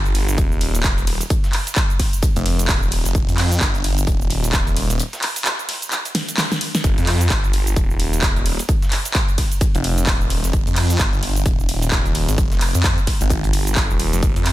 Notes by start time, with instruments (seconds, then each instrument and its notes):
Already playing: detuned saw bass G1
0.05 closed hi-hat, cabasa
0.15 open hi-hat, ride, tambourine
0.28 closed hi-hat, cabasa
0.38 detuned saw bass D#1, kick, closed hi-hat, tambourine, cabasa
0.52 cabasa
0.61 open hi-hat, ride, tambourine
0.75 closed hi-hat, cabasa
0.84 detuned saw bass D#1, kick, snare, clap, closed hi-hat, tambourine, cabasa
0.98 closed hi-hat, cabasa
1.07 open hi-hat, ride, tambourine
1.21 closed hi-hat, cabasa
1.30 kick, closed hi-hat, tambourine, cabasa
1.44 snare, closed hi-hat, cabasa
1.53 clap, open hi-hat, ride, tambourine
1.67 closed hi-hat, cabasa
1.76 kick, snare, clap, closed hi-hat, tambourine, cabasa
1.90 closed hi-hat, cabasa
1.99 kick, snare, open hi-hat, ride, tambourine
2.13 closed hi-hat, cabasa
2.23 kick, closed hi-hat, tambourine, cabasa
2.36 detuned saw bass F1, closed hi-hat, cabasa
2.46 open hi-hat, ride, tambourine
2.59 closed hi-hat, cabasa
2.68 detuned saw bass D#1, kick, snare, clap, open hi-hat, tambourine, cabasa
2.83 cabasa
2.92 open hi-hat, ride, tambourine
3.05 detuned saw bass F1, snare, closed hi-hat, cabasa
3.15 detuned saw bass F1, kick, closed hi-hat, tambourine, cabasa
3.28 detuned saw bass F2, closed hi-hat, cabasa
3.38 snare, clap, open hi-hat, ride
3.52 closed hi-hat, cabasa
3.61 detuned saw bass G1, kick, snare, clap, closed hi-hat, tambourine, cabasa
3.75 closed hi-hat, cabasa
3.84 open hi-hat, ride, tambourine
3.98 closed hi-hat, cabasa
4.07 detuned saw bass D#1, kick, closed hi-hat, tambourine, cabasa
4.21 cabasa
4.30 open hi-hat, ride, tambourine
4.44 closed hi-hat, cabasa
4.53 detuned saw bass D#1, kick, snare, clap, closed hi-hat, tambourine, cabasa
4.67 closed hi-hat, cabasa
4.76 open hi-hat, ride, tambourine
4.90 detuned saw bass D#1, closed hi-hat, cabasa
4.99 closed hi-hat, tambourine, cabasa
5.13 snare, closed hi-hat, cabasa
5.22 clap, open hi-hat, ride, tambourine
5.36 closed hi-hat, open hi-hat, cabasa
5.45 snare, clap, closed hi-hat, tambourine, cabasa
5.59 closed hi-hat, cabasa
5.69 snare, open hi-hat, ride, tambourine
5.82 closed hi-hat, cabasa
5.91 clap, closed hi-hat, tambourine, cabasa
6.05 closed hi-hat, cabasa
6.15 snare, open hi-hat, ride, tambourine
6.29 closed hi-hat, cabasa
6.37 snare, clap, open hi-hat, tambourine, cabasa
6.52 snare, closed hi-hat, cabasa
6.61 open hi-hat, ride, tambourine
6.75 snare, closed hi-hat, cabasa
6.84 detuned saw bass F1, kick, closed hi-hat, tambourine, cabasa
6.98 detuned saw bass F2, closed hi-hat, cabasa
7.07 snare, clap, open hi-hat, ride
7.21 closed hi-hat, cabasa
7.30 detuned saw bass G1, kick, snare, clap, closed hi-hat, tambourine, cabasa
7.44 closed hi-hat, cabasa
7.53 open hi-hat, ride, tambourine
7.67 closed hi-hat, cabasa
7.76 detuned saw bass D#1, kick, closed hi-hat, tambourine, cabasa
7.90 cabasa
8.00 open hi-hat, ride, tambourine
8.13 closed hi-hat, cabasa
8.22 detuned saw bass D#1, kick, snare, clap, closed hi-hat, tambourine, cabasa
8.36 closed hi-hat, cabasa
8.46 open hi-hat, ride, tambourine
8.59 closed hi-hat, cabasa
8.69 kick, closed hi-hat, tambourine, cabasa
8.82 snare, closed hi-hat, cabasa
8.91 clap, open hi-hat, ride, tambourine
9.05 closed hi-hat, cabasa
9.14 kick, snare, clap, closed hi-hat, tambourine, cabasa
9.28 closed hi-hat, cabasa
9.38 kick, snare, open hi-hat, ride, tambourine
9.52 closed hi-hat, cabasa
9.61 kick, closed hi-hat, tambourine, cabasa
9.75 detuned saw bass F1, closed hi-hat, cabasa
9.84 open hi-hat, ride, tambourine
9.98 closed hi-hat, cabasa
10.07 detuned saw bass D#1, kick, snare, clap, open hi-hat, tambourine, cabasa
10.21 cabasa
10.30 open hi-hat, ride, tambourine
10.44 detuned saw bass F1, snare, closed hi-hat, cabasa
10.53 detuned saw bass F1, kick, closed hi-hat, tambourine, cabasa
10.67 detuned saw bass F2, closed hi-hat, cabasa
10.76 snare, clap, open hi-hat, ride
10.90 closed hi-hat, cabasa
10.99 detuned saw bass G1, kick, snare, clap, closed hi-hat, tambourine, cabasa
11.13 closed hi-hat, cabasa
11.23 open hi-hat, ride, tambourine
11.36 closed hi-hat, cabasa
11.46 detuned saw bass D#1, kick, closed hi-hat, tambourine, cabasa
11.60 cabasa
11.69 open hi-hat, ride, tambourine
11.82 closed hi-hat, cabasa
11.91 detuned saw bass D#1, kick, snare, clap, closed hi-hat, tambourine, cabasa
12.06 closed hi-hat, cabasa
12.15 open hi-hat, ride, tambourine
12.29 detuned saw bass G#1, closed hi-hat, cabasa
12.38 detuned saw bass F1, kick, closed hi-hat, tambourine, cabasa
12.52 snare, closed hi-hat, cabasa
12.61 clap, open hi-hat, ride, tambourine
12.75 detuned saw bass F2, closed hi-hat, cabasa
12.84 kick, snare, clap, closed hi-hat, tambourine, cabasa
12.98 closed hi-hat, cabasa
13.07 kick, snare, open hi-hat, ride, tambourine
13.21 detuned saw bass G#1, closed hi-hat, cabasa
13.30 kick, closed hi-hat, tambourine, cabasa
13.44 detuned saw bass G#1, closed hi-hat, cabasa
13.53 detuned saw bass G1, open hi-hat, ride, tambourine
13.67 closed hi-hat, cabasa
13.76 kick, snare, clap, open hi-hat, tambourine, cabasa
13.90 detuned saw bass D#1, cabasa
14.00 open hi-hat, ride, tambourine
14.13 detuned saw bass F1, snare, closed hi-hat, cabasa
14.23 detuned saw bass F1, kick, closed hi-hat, tambourine, cabasa
14.36 detuned saw bass F2, closed hi-hat, cabasa
14.45 snare, clap, open hi-hat, ride